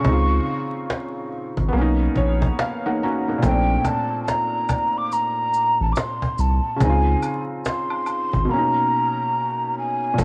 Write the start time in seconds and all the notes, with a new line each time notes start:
Already playing: C#6
0.00 C#3
0.04 C#2 C4, cajon bass
0.08 D#4
0.13 F4
0.47 cajon slap
0.48 cajon slap
0.90 cajon slap
1.32 cajon slap
1.57 G#1, cajon bass
1.69 B3
1.73 B1 A#3, cajon slap
1.77 C#4
1.82 D#4
2.16 A#1 C#5, cajon bass
2.42 cajon bass
2.59 F5, cajon slap
2.86 A#3 D#4 F#5
3.02 C#4 F#4 A#5, cajon slap
3.28 A#3 D#4
3.38 A#2
3.42 A#1 A3 G5, cajon bass, maracas
3.47 C4
3.51 D4
3.85 A5, cajon bass, cajon slap, high woodblock, maracas
4.23 A5
4.28 A#5, cajon slap, maracas
4.69 cajon bass, high woodblock, maracas
4.96 D6, cajon slap
5.12 A#5, cajon slap, maracas
5.52 cajon slap, maracas
5.80 A1 A5, cajon slap
5.92 D6, maracas
5.97 C6, cajon slap
6.22 cajon bass
6.38 C2 A5, cajon slap, maracas
6.76 C#3
6.80 C#2 C4 G#5, cajon bass, maracas
6.85 D#4
6.89 F4
7.22 cajon slap, high woodblock, maracas
7.24 cajon slap
7.65 C6, cajon slap, maracas
7.90 high woodblock
8.06 cajon slap, high woodblock, maracas
8.33 G#1, cajon bass
8.45 B2
8.49 A#3 A#5
8.53 C#4
8.58 D#4
9.78 G#5
10.14 A#2
10.18 A#1 A3 A5, cajon bass, maracas